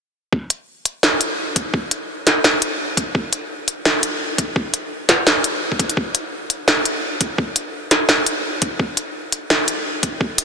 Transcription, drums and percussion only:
0.33 kick loud
0.50 closed hi-hat medium
0.85 closed hi-hat medium
1.03 snare loud
1.21 closed hi-hat medium
1.56 kick loud
1.56 closed hi-hat medium
1.74 kick loud
1.91 closed hi-hat medium
2.27 snare medium
2.27 closed hi-hat medium
2.44 snare loud
2.62 closed hi-hat medium
2.97 kick loud
2.97 closed hi-hat medium
3.15 kick loud
3.33 closed hi-hat medium
3.68 closed hi-hat medium
3.85 snare loud
4.03 closed hi-hat medium
4.38 kick loud
4.38 closed hi-hat medium
4.56 kick loud
4.74 closed hi-hat medium
5.09 kick medium
5.09 snare medium
5.09 closed hi-hat medium
5.27 snare loud
5.44 closed hi-hat medium
5.72 kick medium
5.79 kick loud
5.79 closed hi-hat medium
5.90 closed hi-hat soft
5.97 kick loud
6.15 closed hi-hat medium
6.50 closed hi-hat medium
6.68 snare loud
6.85 closed hi-hat medium
7.21 kick medium
7.21 closed hi-hat medium
7.38 kick loud
7.56 closed hi-hat medium
7.91 snare medium
7.91 closed hi-hat medium
8.09 snare loud
8.26 closed hi-hat medium
8.62 kick medium
8.62 closed hi-hat medium
8.79 kick loud
8.97 closed hi-hat medium
9.32 closed hi-hat medium
9.50 snare loud
9.68 closed hi-hat medium
10.03 kick medium
10.03 closed hi-hat medium
10.21 kick loud
10.38 closed hi-hat medium

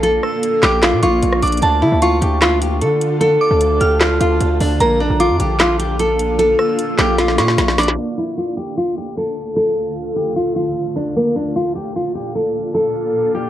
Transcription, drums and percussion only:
0.03 closed hi-hat medium
0.23 cross-stick medium
0.43 closed hi-hat medium
0.63 snare loud
0.63 clap medium
0.63 closed hi-hat medium
0.83 snare loud
0.83 clap loud
0.83 closed hi-hat medium
1.03 closed hi-hat medium
1.22 closed hi-hat medium
1.32 cross-stick medium
1.42 closed hi-hat medium
1.42 open hi-hat medium
1.47 closed hi-hat medium
1.52 closed hi-hat medium
1.57 closed hi-hat medium
1.62 closed hi-hat medium
2.02 closed hi-hat medium
2.22 closed hi-hat medium
2.42 snare loud
2.42 clap loud
2.42 closed hi-hat medium
2.62 closed hi-hat medium
2.81 closed hi-hat medium
3.01 closed hi-hat medium
3.21 closed hi-hat medium
3.61 closed hi-hat medium
3.81 closed hi-hat medium
4.01 snare loud
4.01 clap medium
4.01 closed hi-hat medium
4.21 closed hi-hat medium
4.40 closed hi-hat medium
4.60 open hi-hat medium
4.80 closed hi-hat medium
5.20 closed hi-hat medium
5.40 closed hi-hat medium
5.60 snare loud
5.60 clap loud
5.60 closed hi-hat medium
5.80 closed hi-hat medium
5.99 closed hi-hat medium
6.19 closed hi-hat medium
6.39 closed hi-hat medium
6.59 cross-stick medium
6.79 closed hi-hat medium
6.99 snare loud
6.99 clap medium
6.99 closed hi-hat medium
7.19 snare medium
7.19 closed hi-hat medium
7.28 snare medium
7.38 snare medium
7.38 closed hi-hat medium
7.48 snare medium
7.58 snare medium
7.58 closed hi-hat medium
7.68 snare medium
7.78 snare loud
7.78 closed hi-hat medium
7.78 open hi-hat medium
7.83 closed hi-hat medium
7.88 snare loud
7.88 closed hi-hat medium
7.93 closed hi-hat medium

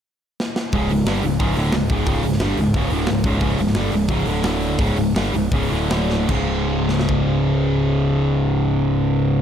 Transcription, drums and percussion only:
0.40 snare medium
0.56 snare medium
0.72 kick loud
0.72 open hi-hat medium
0.89 open hi-hat medium
1.06 snare loud
1.06 open hi-hat medium
1.23 open hi-hat medium
1.40 kick loud
1.56 open hi-hat medium
1.72 snare loud
1.72 open hi-hat medium
1.89 kick loud
1.89 open hi-hat medium
2.06 kick loud
2.06 open hi-hat medium
2.23 open hi-hat medium
2.32 snare soft
2.40 snare loud
2.40 open hi-hat medium
2.57 open hi-hat medium
2.74 kick loud
2.74 open hi-hat medium
2.90 open hi-hat medium
3.06 snare loud
3.06 open hi-hat medium
3.24 kick loud
3.24 open hi-hat medium
3.40 kick loud
3.40 open hi-hat medium
3.58 open hi-hat medium
3.67 snare soft
3.74 snare loud
3.74 open hi-hat medium
3.92 open hi-hat medium
4.09 kick loud
4.26 open hi-hat medium
4.43 snare loud
4.43 open hi-hat loud
4.60 open hi-hat medium
4.79 kick loud
4.79 open hi-hat medium
4.96 open hi-hat medium
5.16 snare loud
5.16 open hi-hat medium
5.34 open hi-hat medium
5.52 kick loud
5.52 open hi-hat medium
5.70 open hi-hat medium
5.90 snare loud
5.90 open hi-hat medium
6.10 snare medium
6.29 kick loud
6.29 crash medium
6.89 snare medium
6.99 snare medium
7.09 kick medium

